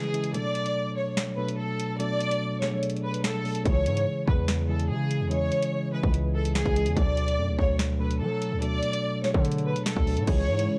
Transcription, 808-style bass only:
3.65 C#2
3.86 G#2
4.28 E2
4.90 C#3
5.21 E2
6.03 C#2
6.66 C#2
6.86 E2
6.97 D2
7.38 F#2
7.48 D2
7.59 D2
8.21 F#3
8.52 D2
9.34 D3
9.97 D2
10.17 A2
10.27 C#2
10.48 G#2

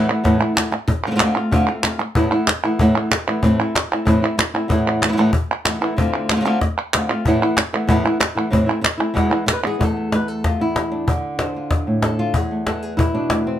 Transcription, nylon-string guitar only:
0.09 E3 A3 B3 E4
0.24 E2 A2 E3 A3 B3 E4
0.39 E3 A3 B3 E4
0.55 E3 A3 B3 E4
0.72 muted nylon-string guitar stroke
0.88 muted nylon-string guitar stroke
1.07 D3 A3 C4 F4
1.11 D3 A3 C4 F4
1.16 D3 A3 C4 F4
1.20 D3 A3 C4 F4
1.36 A3 C4 F4
1.52 D3 A3 C4 F4
1.67 A3 C4 F4
1.83 A3 C4 F4
1.99 muted nylon-string guitar stroke
2.15 E2 A2 E3 A3 B3 E4
2.32 E3 A3 B3 E4
2.48 muted nylon-string guitar stroke
2.64 E3 A3 B3 E4
2.79 E2 A2 E3 A3 B3 E4
2.96 E3 A3 B3 E4
3.11 muted nylon-string guitar stroke
3.27 E3 A3 B3 E4
3.42 A2 E3 A3 C4 E4
3.60 A3 C4 E4
3.75 muted nylon-string guitar stroke
3.92 A3 C4 E4
4.05 A2 E3 A3 C4 E4
4.22 A3 C4 E4
4.38 muted nylon-string guitar stroke
4.54 A3 C4 E4
4.68 E2 A2 E3 A3 B3 E4
5.04 A2 E3 A3 B3 E4
5.08 A2 E3 A3 B3 E4
5.13 A2 E3 A3 B3 E4
5.17 E2 A2 E3 A3 B3 E4
5.33 muted nylon-string guitar stroke
5.65 E3 A3 B3 E4
5.81 E3 A3 B3 E4
5.97 D3 A3 C4 F4
6.31 D3 A3 C4 F4
6.36 D3 A3 C4 F4
6.41 D3 A3 C4 F4
6.45 D3 A3 C4 F4
6.61 muted nylon-string guitar stroke
6.94 D3 A3 C4 F4
7.10 A3 C4 F4
7.26 E2 A2 E3 A3 B3 E4
7.42 E3 A3 B3 E4
7.58 muted nylon-string guitar stroke
7.73 E3 A3 B3 E4
7.87 E2 A2 E3 A3 B3 E4
8.05 E3 A3 B3 E4
8.20 muted nylon-string guitar stroke
8.35 E3 A3 B3 E4
8.51 A2 E3 A3 C4 E4
8.66 A3 C4 E4
8.81 muted nylon-string guitar stroke
8.98 A3 C4 E4
9.14 E2 B2 E3 G#3 B3 E4
9.30 E3 G#3 B3 E4
9.46 muted nylon-string guitar stroke
9.53 B4
9.63 E3 G#3 B3 E4 G#4
9.79 E2 A3 B3
9.84 A4
9.96 B3
10.12 A3 B4
10.28 A4
10.45 F4
10.60 E2 E4
10.92 D4
11.07 D3
11.40 D4 C5
11.56 F4
11.87 A2
12.04 A4
12.19 F4
12.35 E2 G#4
12.51 A3
12.66 E3 A4
12.82 G#4
12.97 E4
13.14 B2 D4
13.31 A3
13.47 C4

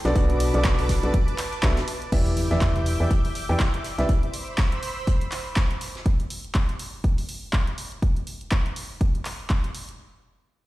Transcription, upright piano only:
0.05 B2 D4 F#4 A4 B4 D5
0.15 B2 A4 B4
0.54 B2 D4 F#4 A4 B4 D5
1.03 B2 D4 F#4 A4 B4 D5
1.63 B2 D4 F#4 A4 B4 E5
2.12 E3 E4 G4 B4 D5 E5
2.51 E3 E4 G4 B4 D5 E5
3.00 E3 E4 G4 B4 D5 E5
3.49 E3 E4 G4 B4 D5 G5
3.98 C3 E4 G4 B4 D5 E5

